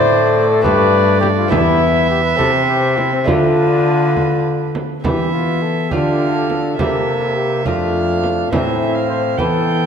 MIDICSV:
0, 0, Header, 1, 7, 480
1, 0, Start_track
1, 0, Tempo, 584795
1, 1246, Time_signature, 6, 3, 24, 8
1, 4138, Tempo, 578592
1, 8136, End_track
2, 0, Start_track
2, 0, Title_t, "Violin"
2, 0, Program_c, 0, 40
2, 0, Note_on_c, 0, 74, 79
2, 525, Note_off_c, 0, 74, 0
2, 530, Note_on_c, 0, 74, 70
2, 1234, Note_on_c, 0, 76, 76
2, 1246, Note_off_c, 0, 74, 0
2, 2682, Note_on_c, 0, 71, 67
2, 2694, Note_off_c, 0, 76, 0
2, 3969, Note_off_c, 0, 71, 0
2, 4143, Note_on_c, 0, 76, 54
2, 4859, Note_on_c, 0, 77, 57
2, 4872, Note_off_c, 0, 76, 0
2, 5575, Note_off_c, 0, 77, 0
2, 5580, Note_on_c, 0, 76, 59
2, 6306, Note_on_c, 0, 77, 62
2, 6318, Note_off_c, 0, 76, 0
2, 7023, Note_off_c, 0, 77, 0
2, 7028, Note_on_c, 0, 76, 57
2, 7383, Note_on_c, 0, 77, 55
2, 7395, Note_off_c, 0, 76, 0
2, 7735, Note_on_c, 0, 79, 62
2, 7747, Note_off_c, 0, 77, 0
2, 8136, Note_off_c, 0, 79, 0
2, 8136, End_track
3, 0, Start_track
3, 0, Title_t, "Cornet"
3, 0, Program_c, 1, 56
3, 0, Note_on_c, 1, 72, 107
3, 403, Note_off_c, 1, 72, 0
3, 414, Note_on_c, 1, 69, 85
3, 516, Note_off_c, 1, 69, 0
3, 521, Note_on_c, 1, 71, 109
3, 988, Note_off_c, 1, 71, 0
3, 993, Note_on_c, 1, 67, 99
3, 1050, Note_off_c, 1, 67, 0
3, 1132, Note_on_c, 1, 65, 85
3, 1233, Note_off_c, 1, 65, 0
3, 1237, Note_on_c, 1, 64, 106
3, 1711, Note_off_c, 1, 64, 0
3, 1723, Note_on_c, 1, 67, 79
3, 1835, Note_off_c, 1, 67, 0
3, 1840, Note_on_c, 1, 71, 81
3, 1948, Note_off_c, 1, 71, 0
3, 1953, Note_on_c, 1, 69, 91
3, 2064, Note_off_c, 1, 69, 0
3, 2199, Note_on_c, 1, 67, 92
3, 2442, Note_on_c, 1, 64, 82
3, 2454, Note_off_c, 1, 67, 0
3, 2564, Note_off_c, 1, 64, 0
3, 2569, Note_on_c, 1, 60, 73
3, 2623, Note_off_c, 1, 60, 0
3, 2699, Note_on_c, 1, 62, 94
3, 3879, Note_off_c, 1, 62, 0
3, 4140, Note_on_c, 1, 67, 73
3, 4363, Note_off_c, 1, 67, 0
3, 4375, Note_on_c, 1, 65, 76
3, 4618, Note_on_c, 1, 69, 71
3, 4631, Note_off_c, 1, 65, 0
3, 4854, Note_on_c, 1, 67, 65
3, 4867, Note_off_c, 1, 69, 0
3, 5219, Note_off_c, 1, 67, 0
3, 5234, Note_on_c, 1, 67, 69
3, 5340, Note_on_c, 1, 69, 65
3, 5353, Note_off_c, 1, 67, 0
3, 6058, Note_off_c, 1, 69, 0
3, 6063, Note_on_c, 1, 67, 70
3, 6295, Note_off_c, 1, 67, 0
3, 6300, Note_on_c, 1, 62, 81
3, 7006, Note_off_c, 1, 62, 0
3, 7020, Note_on_c, 1, 64, 76
3, 7489, Note_off_c, 1, 64, 0
3, 7499, Note_on_c, 1, 72, 77
3, 7607, Note_off_c, 1, 72, 0
3, 7742, Note_on_c, 1, 69, 94
3, 8136, Note_off_c, 1, 69, 0
3, 8136, End_track
4, 0, Start_track
4, 0, Title_t, "Lute"
4, 0, Program_c, 2, 24
4, 0, Note_on_c, 2, 45, 66
4, 0, Note_on_c, 2, 57, 60
4, 0, Note_on_c, 2, 60, 59
4, 0, Note_on_c, 2, 64, 61
4, 495, Note_off_c, 2, 57, 0
4, 499, Note_off_c, 2, 60, 0
4, 500, Note_off_c, 2, 45, 0
4, 503, Note_on_c, 2, 59, 56
4, 506, Note_off_c, 2, 64, 0
4, 512, Note_on_c, 2, 62, 58
4, 525, Note_on_c, 2, 67, 56
4, 537, Note_on_c, 2, 43, 66
4, 1206, Note_off_c, 2, 59, 0
4, 1214, Note_off_c, 2, 62, 0
4, 1216, Note_off_c, 2, 43, 0
4, 1216, Note_on_c, 2, 59, 59
4, 1221, Note_off_c, 2, 67, 0
4, 1225, Note_on_c, 2, 64, 56
4, 1236, Note_on_c, 2, 67, 55
4, 1245, Note_on_c, 2, 40, 60
4, 1928, Note_off_c, 2, 59, 0
4, 1932, Note_off_c, 2, 40, 0
4, 1932, Note_off_c, 2, 64, 0
4, 1938, Note_off_c, 2, 67, 0
4, 1939, Note_on_c, 2, 60, 52
4, 1952, Note_on_c, 2, 64, 53
4, 1958, Note_on_c, 2, 67, 51
4, 1971, Note_on_c, 2, 48, 56
4, 2654, Note_off_c, 2, 60, 0
4, 2660, Note_off_c, 2, 48, 0
4, 2661, Note_off_c, 2, 64, 0
4, 2661, Note_on_c, 2, 57, 51
4, 2664, Note_off_c, 2, 67, 0
4, 2672, Note_on_c, 2, 62, 50
4, 2682, Note_on_c, 2, 65, 50
4, 2693, Note_on_c, 2, 50, 56
4, 3942, Note_off_c, 2, 50, 0
4, 4092, Note_off_c, 2, 57, 0
4, 4097, Note_off_c, 2, 62, 0
4, 4102, Note_off_c, 2, 65, 0
4, 4136, Note_on_c, 2, 52, 49
4, 4142, Note_on_c, 2, 59, 42
4, 4148, Note_on_c, 2, 64, 44
4, 4826, Note_off_c, 2, 52, 0
4, 4830, Note_off_c, 2, 59, 0
4, 4832, Note_off_c, 2, 64, 0
4, 4862, Note_on_c, 2, 50, 47
4, 4863, Note_on_c, 2, 57, 41
4, 4868, Note_on_c, 2, 62, 41
4, 4874, Note_on_c, 2, 65, 43
4, 5551, Note_off_c, 2, 50, 0
4, 5551, Note_off_c, 2, 57, 0
4, 5554, Note_off_c, 2, 62, 0
4, 5555, Note_off_c, 2, 65, 0
4, 5591, Note_on_c, 2, 48, 51
4, 5594, Note_on_c, 2, 58, 45
4, 5595, Note_on_c, 2, 64, 44
4, 5600, Note_on_c, 2, 67, 42
4, 6274, Note_off_c, 2, 48, 0
4, 6274, Note_off_c, 2, 58, 0
4, 6276, Note_off_c, 2, 64, 0
4, 6278, Note_off_c, 2, 67, 0
4, 6309, Note_on_c, 2, 41, 51
4, 6309, Note_on_c, 2, 57, 41
4, 6315, Note_on_c, 2, 60, 42
4, 6318, Note_on_c, 2, 65, 45
4, 6991, Note_off_c, 2, 57, 0
4, 6992, Note_off_c, 2, 41, 0
4, 6994, Note_off_c, 2, 60, 0
4, 6996, Note_off_c, 2, 65, 0
4, 7026, Note_on_c, 2, 45, 49
4, 7029, Note_on_c, 2, 57, 45
4, 7033, Note_on_c, 2, 60, 48
4, 7039, Note_on_c, 2, 52, 46
4, 7709, Note_off_c, 2, 45, 0
4, 7709, Note_off_c, 2, 57, 0
4, 7712, Note_off_c, 2, 60, 0
4, 7714, Note_off_c, 2, 52, 0
4, 7742, Note_on_c, 2, 52, 51
4, 7749, Note_on_c, 2, 59, 47
4, 7754, Note_on_c, 2, 64, 45
4, 8136, Note_off_c, 2, 52, 0
4, 8136, Note_off_c, 2, 59, 0
4, 8136, Note_off_c, 2, 64, 0
4, 8136, End_track
5, 0, Start_track
5, 0, Title_t, "Trombone"
5, 0, Program_c, 3, 57
5, 0, Note_on_c, 3, 57, 83
5, 1218, Note_off_c, 3, 57, 0
5, 1251, Note_on_c, 3, 59, 70
5, 1964, Note_on_c, 3, 60, 61
5, 1976, Note_off_c, 3, 59, 0
5, 2689, Note_on_c, 3, 65, 65
5, 2702, Note_off_c, 3, 60, 0
5, 3898, Note_off_c, 3, 65, 0
5, 4142, Note_on_c, 3, 59, 55
5, 4867, Note_on_c, 3, 62, 57
5, 4879, Note_off_c, 3, 59, 0
5, 5579, Note_off_c, 3, 62, 0
5, 5584, Note_on_c, 3, 58, 62
5, 6289, Note_off_c, 3, 58, 0
5, 6306, Note_on_c, 3, 57, 59
5, 7022, Note_on_c, 3, 60, 58
5, 7034, Note_off_c, 3, 57, 0
5, 7739, Note_on_c, 3, 59, 63
5, 7752, Note_off_c, 3, 60, 0
5, 8136, Note_off_c, 3, 59, 0
5, 8136, End_track
6, 0, Start_track
6, 0, Title_t, "Cello"
6, 0, Program_c, 4, 42
6, 0, Note_on_c, 4, 45, 79
6, 529, Note_on_c, 4, 43, 83
6, 542, Note_off_c, 4, 45, 0
6, 1240, Note_off_c, 4, 43, 0
6, 1245, Note_on_c, 4, 40, 77
6, 1950, Note_off_c, 4, 40, 0
6, 1965, Note_on_c, 4, 48, 75
6, 2691, Note_on_c, 4, 50, 66
6, 2703, Note_off_c, 4, 48, 0
6, 3974, Note_off_c, 4, 50, 0
6, 4139, Note_on_c, 4, 52, 56
6, 4859, Note_on_c, 4, 50, 59
6, 4871, Note_off_c, 4, 52, 0
6, 5575, Note_off_c, 4, 50, 0
6, 5580, Note_on_c, 4, 48, 60
6, 6305, Note_on_c, 4, 41, 60
6, 6317, Note_off_c, 4, 48, 0
6, 7016, Note_off_c, 4, 41, 0
6, 7021, Note_on_c, 4, 45, 59
6, 7743, Note_on_c, 4, 52, 67
6, 7755, Note_off_c, 4, 45, 0
6, 8136, Note_off_c, 4, 52, 0
6, 8136, End_track
7, 0, Start_track
7, 0, Title_t, "Frame drum"
7, 528, Note_on_c, 9, 64, 58
7, 610, Note_off_c, 9, 64, 0
7, 1008, Note_on_c, 9, 64, 48
7, 1090, Note_off_c, 9, 64, 0
7, 1247, Note_on_c, 9, 64, 80
7, 1329, Note_off_c, 9, 64, 0
7, 1968, Note_on_c, 9, 64, 53
7, 2050, Note_off_c, 9, 64, 0
7, 2443, Note_on_c, 9, 64, 46
7, 2525, Note_off_c, 9, 64, 0
7, 2690, Note_on_c, 9, 64, 74
7, 2772, Note_off_c, 9, 64, 0
7, 3418, Note_on_c, 9, 64, 48
7, 3500, Note_off_c, 9, 64, 0
7, 3899, Note_on_c, 9, 64, 51
7, 3981, Note_off_c, 9, 64, 0
7, 4141, Note_on_c, 9, 64, 74
7, 4224, Note_off_c, 9, 64, 0
7, 4861, Note_on_c, 9, 64, 52
7, 4944, Note_off_c, 9, 64, 0
7, 5346, Note_on_c, 9, 64, 46
7, 5429, Note_off_c, 9, 64, 0
7, 5590, Note_on_c, 9, 64, 71
7, 5673, Note_off_c, 9, 64, 0
7, 6306, Note_on_c, 9, 64, 47
7, 6389, Note_off_c, 9, 64, 0
7, 6787, Note_on_c, 9, 64, 46
7, 6870, Note_off_c, 9, 64, 0
7, 7029, Note_on_c, 9, 64, 75
7, 7112, Note_off_c, 9, 64, 0
7, 7741, Note_on_c, 9, 64, 47
7, 7824, Note_off_c, 9, 64, 0
7, 8136, End_track
0, 0, End_of_file